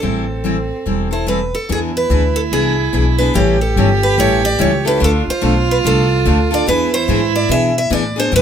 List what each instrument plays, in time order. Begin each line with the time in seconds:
0.00 upright bass A1, steel-string acoustic guitar E3 G3 C4 E4 A4, violin C4
0.44 steel-string acoustic guitar E3 G3 C4 E4 A4
0.86 upright bass E1, steel-string acoustic guitar E3 G3 C4 E4 A4
1.11 steel-string acoustic guitar C4 E4 A4 C5
1.27 steel-string acoustic guitar E3 G3 C4 E4 A4 B4
1.55 steel-string acoustic guitar A4
1.69 upright bass E2, steel-string acoustic guitar E3 B3 D4 G#4, violin E4
1.97 steel-string acoustic guitar B4
2.10 upright bass D2, steel-string acoustic guitar E3 B3 D4 G#4
2.36 steel-string acoustic guitar A4
2.52 upright bass C2, steel-string acoustic guitar E3 B3 D4 G#4
2.93 upright bass B1, steel-string acoustic guitar E3 B3 D4 G#4
3.18 steel-string acoustic guitar B3 D4 G#4 B4
3.34 upright bass A1, steel-string acoustic guitar E3 G3 C#4 E4 G4 A4, violin G4
3.61 steel-string acoustic guitar A4
3.76 upright bass G1, steel-string acoustic guitar E3 G3 C#4 E4 A4
4.03 steel-string acoustic guitar B4
4.18 upright bass A1, steel-string acoustic guitar E3 G3 C#4 E4 A4 C#5
4.45 steel-string acoustic guitar D5
4.59 upright bass C#2, steel-string acoustic guitar E3 G3 C#4 E4 A4 C#5
4.85 steel-string acoustic guitar C#4 E4 A4 B4
4.96 steel-string acoustic guitar D3 A3, violin G4
5.01 upright bass D2, steel-string acoustic guitar D4 F4 A4, violin F4
5.27 steel-string acoustic guitar C5, muted upright bass stroke
5.41 upright bass B1, steel-string acoustic guitar D3 A3 D4 F4 A4
5.71 steel-string acoustic guitar B4
5.84 upright bass C2, steel-string acoustic guitar D3 A3 D4 F4 A4
6.25 upright bass D2, steel-string acoustic guitar D3 A3 D4 F4 A4
6.51 steel-string acoustic guitar D4 F4 A4 D5
6.66 upright bass E2, steel-string acoustic guitar E3 B3 D4 G#4 B4, violin E4
6.94 steel-string acoustic guitar C5
7.08 upright bass G#2, steel-string acoustic guitar E3 B3 D4 G#4
7.36 steel-string acoustic guitar D5
7.49 upright bass B2, steel-string acoustic guitar E3 B3 D4 G#4 E5
7.78 steel-string acoustic guitar E5
7.90 upright bass A2, steel-string acoustic guitar E3 B3 D4 G#4 D5
8.16 steel-string acoustic guitar B3 D4 G#4 C5
8.31 upright bass G2, steel-string acoustic guitar D3 F3 B3 D4 G4, violin G4
8.36 steel-string acoustic guitar B4